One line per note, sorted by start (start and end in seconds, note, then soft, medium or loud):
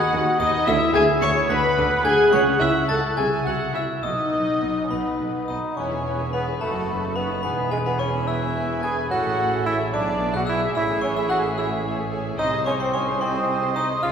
0.00 0.69 D#3 loud
0.00 0.52 B3 medium
0.00 0.69 D#4 medium
0.00 0.39 F#4 medium
0.00 0.39 F#4 loud
0.00 0.39 F#4 medium
0.00 0.25 B4 medium
0.00 0.63 D#5 loud
0.00 0.69 D#5 medium
0.00 0.12 F#5 medium
0.00 0.39 F#5 loud
0.00 0.41 F#5 loud
0.00 0.41 F#5 medium
0.00 2.34 B5 medium
0.00 0.36 F#6 medium
0.12 0.21 D#2 medium
0.12 0.24 D#2 medium
0.12 0.21 D#3 medium
0.12 0.69 F#5 medium
0.27 1.35 B4 medium
0.39 0.48 D#2 loud
0.39 0.51 D#2 loud
0.39 0.47 D#3 medium
0.39 0.67 D#4 loud
0.39 0.69 F#4 medium
0.39 0.67 D#5 loud
0.39 0.69 D#5 loud
0.39 0.48 D#5 loud
0.39 0.65 D#6 loud
0.53 0.93 B3 medium
0.66 0.75 D2 loud
0.66 0.79 D2 loud
0.66 0.75 D3 loud
0.66 2.35 D3 loud
0.66 0.75 E4 loud
0.66 0.95 E4 loud
0.66 0.94 E5 loud
0.66 0.75 E5 loud
0.66 0.94 E5 loud
0.66 1.48 E5 loud
0.66 0.93 E6 loud
0.81 2.35 G#3 medium
0.94 1.03 D2 loud
0.94 1.06 D2 loud
0.94 1.02 D3 medium
0.94 2.35 B3 medium
0.94 1.06 G#4 loud
0.94 1.02 G#4 loud
0.94 1.02 G#5 loud
0.94 1.01 G#5 loud
0.94 1.03 G#5 loud
0.94 1.21 G#6 loud
1.08 2.18 E4 medium
1.21 1.33 D2 loud
1.21 1.31 D2 medium
1.21 1.29 D3 medium
1.21 2.04 G#4 medium
1.21 1.34 C#5 loud
1.21 1.49 C#5 loud
1.21 1.30 C#6 loud
1.21 1.48 C#6 loud
1.21 1.30 C#6 loud
1.21 1.48 C#7 loud
1.36 1.91 B4 medium
1.49 1.58 D2 loud
1.49 1.61 D2 loud
1.49 1.57 D3 loud
1.49 2.05 B4 loud
1.49 2.04 B4 loud
1.49 1.77 E5 medium
1.49 3.14 F#5 loud
1.49 2.06 B5 loud
1.49 2.03 B5 loud
1.49 2.04 B5 loud
1.49 2.01 B6 medium
1.64 2.35 G#5 medium
1.77 1.88 D2 medium
1.77 1.86 D2 loud
1.77 1.85 D3 loud
1.77 4.06 E5 medium
1.92 2.35 B4 medium
2.04 2.12 D2 medium
2.04 2.16 D2 loud
2.04 2.12 D3 medium
2.04 2.32 G#4 loud
2.04 2.33 G#4 loud
2.04 2.32 G#5 loud
2.04 2.13 G#5 loud
2.04 2.31 G#6 loud
2.20 2.74 E4 medium
2.31 2.40 C#2 medium
2.31 2.44 C#2 loud
2.31 2.40 C#3 loud
2.31 3.20 C#3 loud
2.31 2.60 C#4 loud
2.31 2.61 C#4 loud
2.31 2.61 C#5 loud
2.31 2.40 C#5 loud
2.31 2.60 C#5 loud
2.31 2.59 C#6 loud
2.47 3.20 C#4 medium
2.59 2.72 C#2 medium
2.59 2.69 C#2 medium
2.59 2.68 C#3 medium
2.59 3.45 A3 medium
2.59 2.72 E4 loud
2.59 2.69 E4 loud
2.59 2.88 E5 medium
2.59 2.69 E5 loud
2.59 2.88 E5 loud
2.59 2.87 E6 medium
2.75 3.02 E4 medium
2.88 3.00 C#2 medium
2.88 2.97 C#2 medium
2.88 2.97 C#3 medium
2.88 2.97 A4 loud
2.88 3.17 A4 loud
2.88 2.95 A5 loud
2.88 2.97 A5 loud
2.88 3.17 A5 medium
2.88 3.15 A6 medium
3.04 3.59 E4 medium
3.17 3.28 C2 medium
3.17 3.25 C2 medium
3.17 3.25 C3 medium
3.17 4.06 C3 medium
3.17 3.25 G#4 medium
3.17 3.31 G#4 loud
3.17 4.04 E5 loud
3.17 3.23 G#5 medium
3.17 3.25 G#5 medium
3.17 3.46 G#5 loud
3.17 3.44 G#6 medium
3.32 4.06 C4 medium
3.44 3.57 C2 medium
3.44 3.54 C2 medium
3.44 3.54 C3 medium
3.44 4.06 A3 medium
3.44 3.54 F#4 medium
3.44 3.74 F#4 loud
3.44 3.51 F#5 medium
3.44 3.74 F#5 medium
3.44 3.55 F#5 medium
3.44 3.73 F#6 medium
3.60 3.88 E4 medium
3.73 3.86 C2 medium
3.73 3.83 C2 medium
3.73 3.82 C3 medium
3.73 3.82 E4 medium
3.73 4.04 E4 medium
3.73 4.06 A4 medium
3.73 3.80 E5 medium
3.73 3.82 E5 medium
3.73 4.02 E6 medium
3.89 4.06 E4 medium
4.03 4.15 B1 medium
4.03 4.12 B1 medium
4.03 4.11 B2 medium
4.03 5.80 B2 medium
4.03 5.46 D#4 medium
4.03 4.88 D#5 medium
4.03 5.34 D#5 medium
4.03 5.46 D#5 medium
4.03 4.89 D#5 medium
4.03 5.45 D#6 medium
4.18 6.87 B3 soft
4.32 4.44 B1 medium
4.32 4.40 B1 medium
4.32 4.40 B2 medium
4.32 5.80 F#3 soft
4.47 4.76 F#4 medium
4.61 4.70 B1 medium
4.61 4.73 B1 medium
4.61 4.69 B2 medium
4.61 5.47 B4 medium
4.77 5.33 F#4 medium
4.84 4.92 C#4 medium
4.90 4.98 B1 medium
4.90 5.03 B1 medium
4.90 4.98 B2 medium
4.90 5.47 B3 medium
4.90 5.44 B4 medium
4.90 5.45 B4 medium
4.90 5.18 F#5 medium
4.90 5.45 B5 medium
5.05 8.95 B5 medium
5.19 5.28 B1 medium
5.19 5.32 B1 medium
5.19 5.27 B2 medium
5.19 5.80 F#5 medium
5.34 5.62 F#4 soft
5.48 5.60 B1 medium
5.48 5.57 B1 medium
5.48 5.56 B2 medium
5.48 5.78 D#4 medium
5.48 6.32 B4 medium
5.48 5.77 D#5 medium
5.48 5.57 D#5 medium
5.48 5.75 D#6 medium
5.63 5.80 F#4 medium
5.77 6.57 E1 medium
5.77 6.58 E1 medium
5.77 6.57 E2 medium
5.77 6.63 E2 medium
5.77 6.33 C#4 medium
5.77 5.91 E4 medium
5.77 6.58 G#4 medium
5.77 9.07 B4 medium
5.77 5.91 B4 medium
5.77 6.33 C#5 medium
5.77 5.91 G#5 medium
5.77 5.91 B5 medium
5.77 6.30 C#6 medium
5.92 6.63 B2 medium
5.92 6.06 G#4 medium
5.92 6.06 E5 medium
5.92 6.06 G#5 medium
6.06 6.20 E4 medium
6.06 6.20 B4 medium
6.06 6.19 G#5 medium
6.06 6.20 B5 medium
6.20 6.63 E4 medium
6.20 6.34 G#4 medium
6.20 6.34 E5 medium
6.20 6.34 G#5 medium
6.33 6.46 B3 medium
6.33 6.47 E4 medium
6.33 6.60 B4 medium
6.33 7.15 B4 medium
6.33 6.40 B4 medium
6.33 6.47 B4 medium
6.33 6.46 G#5 medium
6.33 6.59 B5 medium
6.33 6.47 B5 medium
6.47 6.63 G#4 medium
6.47 6.62 G#4 medium
6.47 6.61 E5 medium
6.47 6.61 G#5 medium
6.61 7.46 F#1 medium
6.61 7.43 F#1 medium
6.61 7.42 F#2 medium
6.61 7.46 F#2 medium
6.61 7.18 A3 medium
6.61 6.74 D#4 medium
6.61 7.40 F#4 medium
6.61 7.45 F#4 medium
6.61 7.15 A4 medium
6.61 7.18 A4 medium
6.61 6.74 B4 medium
6.61 6.74 F#5 medium
6.61 7.12 A5 medium
6.61 6.74 B5 medium
6.75 7.46 F#3 medium
6.75 6.89 F#4 medium
6.75 6.89 A4 medium
6.75 6.89 D#5 medium
6.75 6.89 A5 medium
6.88 7.70 B3 medium
6.88 7.03 D#4 medium
6.88 7.03 B4 medium
6.88 7.03 F#5 medium
6.88 7.03 B5 medium
7.02 7.29 D#4 medium
7.02 7.17 F#4 medium
7.02 7.17 A4 medium
7.02 7.17 D#5 medium
7.02 7.17 A5 medium
7.15 7.43 B3 medium
7.15 7.30 D#4 medium
7.15 7.23 B4 medium
7.15 8.13 B4 medium
7.15 7.43 B4 medium
7.15 7.29 B4 medium
7.15 7.29 F#5 medium
7.15 7.42 B5 medium
7.15 7.29 B5 medium
7.30 7.46 D#4 medium
7.30 7.44 F#4 medium
7.30 7.44 A4 medium
7.30 7.44 D#5 medium
7.30 7.44 A5 medium
7.43 9.11 E1 medium
7.43 9.13 E1 medium
7.43 9.11 E2 medium
7.43 9.14 E2 medium
7.43 7.71 B3 medium
7.43 7.57 E4 medium
7.43 8.30 G#4 medium
7.43 10.72 G#4 medium
7.43 7.57 B4 medium
7.43 7.52 B4 medium
7.43 7.73 B4 medium
7.43 7.57 G#5 medium
7.43 7.69 B5 medium
7.58 9.13 B2 medium
7.58 7.72 G#4 medium
7.58 7.73 E5 medium
7.58 7.73 B5 medium
7.71 7.78 G#3 medium
7.71 9.13 B3 medium
7.71 7.86 E4 medium
7.71 7.77 G#4 medium
7.71 7.85 G#4 medium
7.71 7.86 B4 medium
7.71 7.85 G#5 medium
7.71 7.87 G#5 medium
7.85 8.01 B3 medium
7.85 8.96 E4 medium
7.85 8.00 G#4 medium
7.85 7.91 B4 medium
7.85 8.00 E5 medium
7.85 8.00 B5 medium
7.85 7.99 B5 medium
7.99 8.29 C#4 medium
7.99 8.13 E4 medium
7.99 8.82 G#4 medium
7.99 8.13 B4 medium
7.99 8.05 C#5 medium
7.99 8.07 C#5 medium
7.99 8.13 G#5 medium
7.99 8.26 C#6 medium
8.13 8.28 G#4 medium
8.13 8.68 B4 medium
8.13 8.27 E5 medium
8.13 8.28 B5 medium
8.27 8.83 E4 medium
8.27 8.42 E4 medium
8.27 9.11 B4 medium
8.27 8.42 B4 medium
8.27 8.82 E5 medium
8.27 8.84 E5 medium
8.27 8.54 E5 medium
8.27 8.42 G#5 medium
8.27 8.79 E6 medium
8.40 8.56 G#4 medium
8.40 8.55 E5 medium
8.40 11.70 G#5 medium
8.40 8.55 B5 medium
8.54 8.69 E4 medium
8.54 8.69 B4 medium
8.54 11.57 E5 medium
8.54 8.68 G#5 medium
8.69 8.84 G#4 medium
8.69 9.13 B4 medium
8.69 8.83 E5 medium
8.69 8.83 B5 medium
8.82 8.98 E4 medium
8.82 8.96 G#4 medium
8.82 8.98 B4 medium
8.82 9.10 G#5 medium
8.82 8.97 G#5 medium
8.82 9.09 G#6 medium
8.97 9.51 E4 medium
8.97 9.11 G#4 medium
8.97 9.09 E5 medium
8.97 9.11 B5 medium
9.10 9.94 A1 medium
9.10 9.96 A2 medium
9.10 9.94 A2 medium
9.10 9.65 F#4 loud
9.10 9.24 A4 medium
9.10 9.92 A4 medium
9.10 9.24 C#5 medium
9.10 9.92 C#5 medium
9.10 9.22 E5 medium
9.10 9.67 F#5 medium
9.10 9.65 F#5 medium
9.10 9.23 G#5 medium
9.10 9.63 F#6 medium
9.24 9.96 E3 medium
9.24 9.39 G#4 medium
9.24 9.38 A4 medium
9.24 9.36 E5 medium
9.24 9.36 G#5 medium
9.37 9.96 C#4 medium
9.37 9.52 A4 medium
9.37 9.53 C#5 medium
9.37 9.49 E5 medium
9.37 9.50 G#5 medium
9.50 10.34 E4 medium
9.50 9.66 G#4 medium
9.50 9.65 A4 medium
9.50 9.64 E5 medium
9.50 9.64 G#5 medium
9.65 9.79 E4 medium
9.65 10.48 G#4 medium
9.65 9.79 A4 medium
9.65 9.79 C#5 medium
9.65 9.78 E5 medium
9.65 9.92 E5 medium
9.65 9.93 E5 medium
9.65 9.78 G#5 medium
9.65 9.92 E6 medium
9.79 9.94 G#4 medium
9.79 9.94 A4 medium
9.79 9.96 C#5 medium
9.79 9.92 E5 medium
9.79 9.93 G#5 medium
9.92 10.74 B1 medium
9.92 10.78 B2 medium
9.92 10.74 B2 medium
9.92 10.34 D4 loud
9.92 10.07 E4 medium
9.92 12.35 G#4 medium
9.92 10.07 B4 medium
9.92 10.06 D5 medium
9.92 10.35 D5 medium
9.92 10.34 D5 medium
9.92 10.05 E5 medium
9.92 10.76 E5 medium
9.92 10.32 D6 medium
10.07 12.52 G#3 medium
10.07 10.22 G#4 medium
10.07 10.19 D5 medium
10.07 10.22 D5 medium
10.07 10.19 E5 medium
10.20 10.78 B3 medium
10.20 10.35 E4 medium
10.20 10.35 B4 medium
10.20 10.33 D5 medium
10.20 10.33 E5 medium
10.34 11.16 E4 medium
10.34 10.42 F#4 loud
10.34 10.49 G#4 medium
10.34 10.47 D5 medium
10.34 10.49 D5 medium
10.34 10.47 E5 medium
10.34 10.49 F#5 medium
10.34 10.48 F#5 medium
10.34 10.47 F#6 medium
10.47 10.61 E4 loud
10.47 10.61 E4 medium
10.47 11.30 G#4 medium
10.47 10.62 B4 medium
10.47 10.60 D5 medium
10.47 10.74 E5 medium
10.47 10.60 E5 medium
10.47 10.73 E5 medium
10.47 10.73 E6 medium
10.61 10.76 G#4 medium
10.61 10.75 D5 medium
10.61 10.76 D5 medium
10.61 10.74 E5 medium
10.74 12.36 A1 medium
10.74 12.36 A2 medium
10.74 12.42 A2 medium
10.74 11.03 E4 loud
10.74 12.36 G#4 medium
10.74 10.89 A4 medium
10.74 12.36 C#5 medium
10.74 10.89 C#5 medium
10.74 10.82 E5 medium
10.74 11.02 E5 medium
10.74 10.88 E5 medium
10.74 10.88 G#5 medium
10.74 11.01 E6 medium
10.89 12.42 E3 medium
10.89 11.04 G#4 medium
10.89 11.03 A4 medium
10.89 11.01 E5 medium
10.89 11.01 G#5 medium
11.01 12.42 C#4 medium
11.01 11.17 C#4 loud
11.01 11.17 A4 medium
11.01 11.08 C#5 medium
11.01 11.16 C#5 medium
11.01 11.17 C#5 medium
11.01 11.16 E5 medium
11.01 11.17 G#5 medium
11.01 11.15 C#6 medium
11.15 12.25 E4 medium
11.15 11.31 E4 medium
11.15 11.31 G#4 medium
11.15 11.30 A4 medium
11.15 11.29 E5 medium
11.15 11.30 E5 medium
11.15 11.31 E5 medium
11.15 11.31 G#5 medium
11.15 11.29 E6 medium
11.29 11.43 F#4 loud
11.29 11.44 A4 medium
11.29 11.44 C#5 medium
11.29 11.44 E5 medium
11.29 11.37 F#5 medium
11.29 11.35 F#5 medium
11.29 11.44 G#5 medium
11.29 11.56 F#6 medium
11.44 11.59 G#4 medium
11.44 11.57 A4 medium
11.44 11.98 C#5 medium
11.44 11.58 E5 medium
11.44 11.58 G#5 medium
11.57 11.71 E4 medium
11.57 11.70 A4 medium
11.57 11.72 C#5 medium
11.57 11.63 E5 medium
11.57 11.84 E5 medium
11.57 11.71 E5 medium
11.57 11.71 G#5 medium
11.57 11.83 E6 medium
11.71 11.85 G#4 medium
11.71 11.84 A4 medium
11.71 11.85 E5 medium
11.71 13.34 G#5 medium
11.71 11.85 G#5 medium
11.85 11.98 A4 medium
11.85 11.98 C#5 medium
11.85 12.42 E5 medium
11.85 11.97 E5 medium
11.85 11.97 G#5 medium
11.98 12.12 G#4 medium
11.98 12.11 A4 medium
11.98 12.42 C#5 medium
11.98 12.11 E5 medium
11.98 12.11 G#5 medium
12.12 12.93 G#4 medium
12.12 12.25 A4 medium
12.12 12.26 C#5 medium
12.12 12.24 E5 medium
12.12 12.24 G#5 medium
12.25 12.42 E4 medium
12.25 12.39 G#4 medium
12.25 12.40 A4 medium
12.25 12.39 E5 medium
12.25 12.38 G#5 medium
12.38 14.00 C2 medium
12.38 13.87 C2 medium
12.38 14.00 C3 medium
12.38 14.06 C3 medium
12.38 12.51 D#4 loud
12.38 12.92 C5 medium
12.38 12.52 C5 medium
12.38 12.45 D#5 medium
12.38 12.64 D#5 loud
12.38 12.52 D#5 medium
12.38 12.52 G#5 medium
12.38 12.65 D#6 medium
12.52 14.12 G#3 medium
12.52 12.67 G#4 medium
12.52 12.66 C5 medium
12.52 12.67 D#5 medium
12.52 12.66 C6 medium
12.66 14.05 C4 medium
12.66 12.73 C#4 loud
12.66 12.76 G#4 medium
12.66 12.80 C5 medium
12.66 12.77 C5 medium
12.66 12.80 C5 medium
12.66 12.80 C#5 medium
12.66 12.72 C#5 medium
12.66 12.80 D#5 medium
12.66 12.80 G#5 medium
12.66 12.79 C#6 medium
12.80 12.93 C4 medium
12.80 13.89 D#4 medium
12.80 12.94 G#4 medium
12.80 12.93 C5 medium
12.80 12.94 D#5 medium
12.80 12.94 C6 medium
12.80 12.93 C6 medium
12.92 13.21 C#4 loud
12.92 13.03 G#4 medium
12.92 13.75 G#4 medium
12.92 13.03 C5 medium
12.92 13.06 C5 medium
12.92 13.07 C5 medium
12.92 13.01 C#5 medium
12.92 12.99 C#5 medium
12.92 13.07 D#5 medium
12.92 13.06 G#5 medium
12.92 13.19 C#6 medium
13.07 13.21 G#4 medium
13.07 13.20 C5 medium
13.07 13.61 C5 medium
13.07 13.21 D#5 medium
13.07 13.21 C6 medium
13.21 13.75 C4 loud
13.21 13.77 C5 medium
13.21 13.75 C5 medium
13.21 13.35 C5 medium
13.21 13.34 C5 medium
13.21 13.48 D#5 medium
13.21 14.00 D#5 loud
13.21 13.35 D#5 medium
13.21 13.35 G#5 medium
13.21 13.72 C6 medium
13.35 13.49 G#4 medium
13.35 13.48 C5 medium
13.35 13.49 D#5 medium
13.35 14.12 G#5 medium
13.35 13.49 C6 medium
13.48 13.58 G#4 medium
13.48 13.58 C5 medium
13.48 13.62 C5 medium
13.48 14.06 D#5 medium
13.48 13.62 D#5 medium
13.48 13.62 G#5 medium
13.62 13.76 G#4 medium
13.62 14.06 C5 medium
13.62 13.75 C5 medium
13.62 13.76 D#5 medium
13.62 13.76 C6 medium
13.75 13.88 D#4 medium
13.75 13.85 G#4 medium
13.75 14.12 G#4 medium
13.75 13.85 C5 medium
13.75 13.90 C5 medium
13.75 14.05 D#5 medium
13.75 14.03 D#5 medium
13.75 13.90 D#5 medium
13.75 13.90 G#5 medium
13.75 14.01 D#6 medium
13.90 14.06 D#4 medium
13.90 14.04 G#4 medium
13.90 14.04 C5 medium
13.90 14.04 D#5 medium
13.90 14.04 C6 medium
14.03 14.12 C#2 medium
14.03 14.12 C#3 medium
14.03 14.12 F4 loud
14.03 14.12 F4 medium
14.03 14.12 G#4 medium
14.03 14.12 C#5 medium
14.03 14.12 F5 medium
14.03 14.12 G#5 medium
14.03 14.12 F6 medium